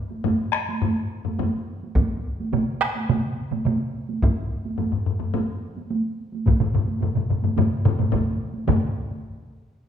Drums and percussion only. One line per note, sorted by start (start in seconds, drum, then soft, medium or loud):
0.11 taiko high medium
0.24 taiko low-mid loud
0.24 taiko high medium
0.53 taiko rim medium
0.69 taiko high medium
0.82 taiko low-mid loud
0.82 taiko high medium
1.25 taiko low-mid medium
1.25 taiko high medium
1.39 taiko low-mid loud
1.39 taiko high medium
1.83 taiko high medium
1.95 taiko loud
1.95 taiko high medium
2.40 taiko high medium
2.53 taiko mid loud
2.53 taiko high medium
2.81 taiko rim medium
2.95 taiko high medium
3.09 taiko mid loud
3.09 taiko high medium
3.51 taiko mid medium
3.51 taiko high medium
3.65 taiko mid loud
3.65 taiko high medium
4.09 taiko high medium
4.22 taiko loud
4.22 taiko high medium
4.65 taiko high medium
4.78 taiko low-mid medium
4.78 taiko high medium
4.92 taiko low-mid medium
5.06 taiko low-mid medium
5.20 taiko low-mid medium
5.20 taiko high medium
5.34 taiko low-mid loud
5.34 taiko high medium
5.76 taiko high medium
5.90 taiko high medium
6.32 taiko high medium
6.46 taiko medium
6.46 taiko low-mid medium
6.46 taiko mid medium
6.46 taiko high medium
6.60 taiko low-mid medium
6.60 taiko mid medium
6.74 taiko low-mid medium
6.74 taiko mid medium
6.87 taiko high medium
7.01 taiko low-mid medium
7.01 taiko mid medium
7.01 taiko high medium
7.16 taiko low-mid medium
7.16 taiko mid medium
7.30 taiko low-mid medium
7.30 taiko mid medium
7.42 taiko low-mid medium
7.42 taiko mid medium
7.42 taiko high medium
7.57 taiko low-mid loud
7.57 taiko mid loud
7.57 taiko high medium
7.85 taiko low-mid loud
7.85 taiko mid medium
7.98 taiko low-mid medium
7.98 taiko mid medium
7.98 taiko high medium
8.12 taiko medium
8.12 taiko low-mid loud
8.12 taiko mid medium
8.12 taiko high medium
8.53 taiko high soft
8.67 taiko medium
8.67 taiko low-mid loud
8.67 taiko mid loud
8.67 taiko high medium